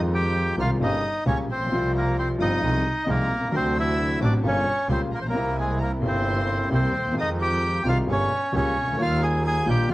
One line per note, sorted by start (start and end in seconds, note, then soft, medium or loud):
0.00 0.54 F2 medium
0.00 0.53 D#3 medium
0.00 0.54 F3 medium
0.00 0.54 G#3 medium
0.00 0.54 C4 medium
0.00 0.54 D#4 medium
0.00 0.54 F4 medium
0.00 0.55 F4 medium
0.13 0.55 G4 medium
0.13 0.55 G5 medium
0.13 0.55 G6 medium
0.57 0.76 C2 medium
0.57 0.77 C3 medium
0.57 0.76 D#3 medium
0.57 0.76 G#3 medium
0.57 0.77 G#3 medium
0.57 0.76 C4 medium
0.57 0.77 D#4 medium
0.57 0.77 F4 medium
0.57 0.70 F4 medium
0.57 0.69 F6 medium
0.61 0.71 F5 medium
0.80 0.99 G1 medium
0.80 0.99 G1 loud
0.80 0.99 G2 medium
0.80 0.99 C#3 medium
0.80 0.99 G3 medium
0.80 0.99 A#3 medium
0.80 1.00 A#3 medium
0.80 1.00 C#4 medium
0.80 1.24 D#4 medium
0.80 0.99 G4 medium
0.80 1.24 D#5 medium
0.80 1.24 D#6 medium
1.25 1.45 C#2 medium
1.25 1.45 C#3 medium
1.25 1.45 G3 medium
1.25 1.45 A#3 medium
1.25 1.45 C#4 medium
1.25 1.37 C#4 medium
1.25 1.45 G4 medium
1.25 1.38 C#5 medium
1.25 1.37 C#6 medium
1.48 1.70 A#1 medium
1.48 1.92 C4 medium
1.48 1.92 C5 medium
1.48 1.91 C6 medium
1.55 1.60 A1 medium
1.61 1.66 A#1 medium
1.66 1.72 B1 medium
1.71 2.36 C2 loud
1.71 2.36 C2 medium
1.71 2.36 C3 medium
1.71 2.36 F3 medium
1.71 2.36 G3 medium
1.71 2.37 G3 medium
1.71 2.36 C4 medium
1.71 2.36 F4 medium
1.71 2.37 F4 medium
1.96 2.17 A#3 medium
1.96 2.17 A#4 medium
1.96 2.16 A#5 medium
2.19 2.28 C4 medium
2.19 2.29 C5 medium
2.19 2.28 C6 medium
2.38 2.58 G1 medium
2.38 2.58 G2 medium
2.38 2.58 C3 medium
2.38 2.58 F3 medium
2.38 2.58 G3 medium
2.38 2.59 G3 medium
2.38 2.59 C4 medium
2.38 3.04 D#4 medium
2.38 2.58 F4 medium
2.38 2.59 F4 medium
2.38 3.10 D#5 loud
2.38 3.04 D#6 medium
2.61 2.80 C2 medium
2.61 2.81 C2 loud
2.61 2.81 C3 medium
2.61 2.80 F3 medium
2.61 2.81 G#3 medium
2.61 2.81 D#4 medium
2.61 2.81 F4 medium
3.06 3.26 C2 medium
3.06 3.27 C2 loud
3.06 3.26 C3 medium
3.06 3.26 F3 medium
3.06 3.26 G#3 medium
3.06 3.27 G#3 medium
3.06 3.50 A#3 medium
3.06 3.26 D#4 medium
3.06 3.27 D#4 medium
3.06 3.27 F4 medium
3.10 3.55 A#4 medium
3.10 3.51 A#5 medium
3.32 3.41 B1 soft
3.32 3.53 C2 medium
3.40 3.46 C2 medium
3.46 3.52 C#2 medium
3.50 4.17 D2 medium
3.50 4.18 D2 loud
3.50 4.16 C3 medium
3.50 4.17 D3 medium
3.50 4.16 F#3 medium
3.50 4.17 A3 medium
3.50 4.17 C4 medium
3.50 4.17 D4 medium
3.50 4.18 D4 medium
3.50 4.17 F#4 medium
3.55 3.75 C4 medium
3.55 3.78 C5 loud
3.55 3.75 C6 medium
3.78 4.19 E4 medium
3.78 4.20 E5 loud
3.78 4.19 E6 medium
4.20 4.39 A1 medium
4.20 4.40 A1 medium
4.20 4.40 A2 medium
4.20 4.39 C3 medium
4.20 4.40 F#3 medium
4.20 4.40 A3 medium
4.20 4.39 C4 medium
4.20 4.40 D4 medium
4.20 4.33 D4 medium
4.20 4.40 F#4 medium
4.20 4.32 D6 medium
4.25 4.34 D5 medium
4.43 4.62 G1 medium
4.43 4.62 G2 medium
4.43 4.62 C#3 medium
4.43 4.62 G3 medium
4.43 4.62 A#3 medium
4.43 4.87 C#4 medium
4.43 4.62 F4 medium
4.43 4.62 G4 medium
4.43 4.86 C#6 medium
4.48 4.88 C#5 medium
4.88 5.08 C#2 medium
4.88 5.08 C#3 medium
4.88 5.08 G3 medium
4.88 5.08 A#3 medium
4.88 5.01 C4 medium
4.88 5.08 F4 medium
4.88 5.08 G4 medium
4.88 5.00 C6 medium
4.92 5.02 C5 medium
5.12 5.34 A#1 medium
5.12 5.19 A#3 medium
5.12 5.19 A#4 medium
5.12 5.18 A#5 medium
5.17 5.23 A1 medium
5.17 5.24 C6 medium
5.21 5.29 A#1 medium
5.21 5.27 C5 medium
5.26 5.34 B1 medium
5.26 5.57 A#3 medium
5.26 5.57 A#4 medium
5.26 5.55 A#5 medium
5.33 5.99 C2 medium
5.33 5.99 C2 loud
5.33 5.99 C3 medium
5.33 5.98 G3 medium
5.33 5.99 A#3 medium
5.33 5.99 C4 medium
5.33 5.99 E4 medium
5.33 6.00 E4 medium
5.57 5.79 G#3 medium
5.57 5.80 G#4 medium
5.57 5.78 G#5 medium
5.79 5.92 A#3 medium
5.79 5.89 A#5 medium
5.83 5.92 A#4 medium
6.00 6.67 G1 medium
6.00 6.67 G2 medium
6.00 6.66 C3 medium
6.00 6.67 G3 medium
6.00 6.67 A#3 medium
6.00 6.68 A#3 medium
6.00 6.67 C4 medium
6.00 6.68 E4 medium
6.00 6.67 C6 medium
6.06 6.69 C4 medium
6.06 6.69 C5 medium
6.70 6.90 C2 medium
6.70 6.90 C3 medium
6.70 6.90 G3 medium
6.70 6.90 A#3 medium
6.70 6.90 C4 medium
6.70 7.15 C4 medium
6.70 6.90 E4 medium
6.70 7.14 C6 medium
6.75 7.16 C5 medium
6.93 7.15 D#2 medium
6.98 7.04 D2 soft
7.04 7.11 D#2 medium
7.10 7.16 E2 medium
7.10 7.79 D#3 medium
7.10 7.80 G#3 medium
7.14 7.80 F2 medium
7.14 7.81 F2 loud
7.14 7.80 F3 medium
7.14 7.81 G#3 medium
7.14 7.81 C4 medium
7.14 7.81 D#4 medium
7.14 7.81 F4 medium
7.18 7.29 D#4 medium
7.18 7.30 D#5 loud
7.18 7.28 D#6 medium
7.40 7.83 G4 medium
7.40 7.88 G5 loud
7.40 7.82 G6 medium
7.83 8.04 C2 medium
7.83 8.04 C3 medium
7.83 8.03 D#3 medium
7.83 8.03 G#3 medium
7.83 8.04 G#3 medium
7.83 8.04 C4 medium
7.83 8.04 D#4 medium
7.83 8.04 F4 medium
7.83 7.96 F6 medium
7.88 7.97 F4 medium
7.88 7.98 F5 medium
8.06 8.26 G1 medium
8.06 8.27 G1 loud
8.06 8.26 G2 medium
8.06 8.26 C#3 medium
8.06 8.26 G3 medium
8.06 8.26 A#3 medium
8.06 8.27 A#3 medium
8.06 8.27 C#4 medium
8.06 8.26 G4 medium
8.06 8.27 G4 medium
8.06 8.50 C#6 medium
8.11 8.52 C#4 medium
8.11 8.55 C#5 medium
8.52 8.72 C#2 medium
8.52 8.73 C#2 loud
8.52 8.72 C#3 medium
8.52 8.72 G3 medium
8.52 8.72 A#3 medium
8.52 8.72 C#4 medium
8.52 8.96 C#4 medium
8.52 8.72 G4 medium
8.52 8.73 G4 medium
8.52 8.96 C#6 medium
8.57 9.02 C#5 medium
8.76 8.98 C#2 medium
8.81 8.87 C2 medium
8.87 8.93 C#2 medium
8.92 8.98 D2 medium
8.92 9.63 D#3 medium
8.98 9.63 D#2 medium
8.98 9.63 D#2 loud
8.98 9.63 G3 medium
8.98 9.63 A#3 medium
8.98 9.63 D#4 medium
8.98 9.63 F4 medium
8.98 9.64 F4 medium
8.98 9.21 F4 medium
8.98 9.21 F6 medium
9.02 9.23 F5 loud
9.22 9.43 G#4 medium
9.22 9.44 G#5 loud
9.22 9.44 G#6 medium
9.46 9.66 G#4 medium
9.46 9.69 G#5 loud
9.46 9.66 G#6 medium
9.66 9.85 A#1 medium
9.66 9.86 A#1 loud
9.66 9.85 A#2 medium
9.66 9.85 D#3 medium
9.66 9.85 G3 medium
9.66 9.86 G3 medium
9.66 9.85 A#3 medium
9.66 9.86 D#4 medium
9.66 9.85 F4 medium
9.66 9.86 F4 medium
9.66 9.89 G4 medium
9.66 9.88 G6 medium
9.70 9.89 G5 medium
9.89 9.94 F2 medium
9.89 9.94 F2 loud
9.89 9.94 C3 medium
9.89 9.94 F3 medium
9.89 9.94 G#3 medium
9.89 9.94 C4 medium
9.89 9.94 F4 medium